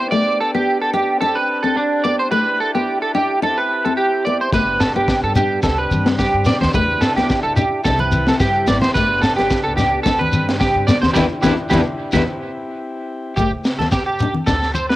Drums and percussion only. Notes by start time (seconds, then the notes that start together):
4.53 kick, snare, shekere
4.80 snare, shekere
5.08 kick, snare, shekere
5.36 low conga, shekere
5.63 kick, snare, shekere
5.91 high conga, shekere
6.06 snare
6.19 kick, snare, shekere
6.45 snare, low conga, shekere
6.61 snare, high conga, shekere
6.73 kick, shekere
7.01 snare, shekere
7.17 snare
7.29 kick, snare, shekere
7.56 low conga, shekere
7.85 kick, snare, shekere
7.99 high conga
8.12 high conga, shekere
8.27 snare
8.40 kick, snare, shekere
8.67 snare, low conga, shekere
8.81 snare, high conga, shekere
8.95 kick, snare, shekere
9.22 snare, shekere
9.38 snare
9.50 kick, snare, shekere
9.78 snare, low conga, shekere
10.06 kick, snare, shekere
10.21 high conga
10.32 high conga, shekere
10.49 snare
10.60 kick, snare, shekere
10.88 snare, low conga, shekere
11.03 snare, high conga, shekere
11.15 kick, snare, high conga, shekere
11.43 kick, snare, high conga, shekere
11.70 kick, snare, high conga, shekere
12.12 kick, snare, high conga, shekere
13.37 kick, shekere
13.65 snare, shekere
13.80 snare, high conga
13.91 kick, snare, shekere
14.19 low conga, shekere
14.34 high conga
14.47 kick, snare, shekere
14.62 snare
14.74 high conga, shekere
14.90 snare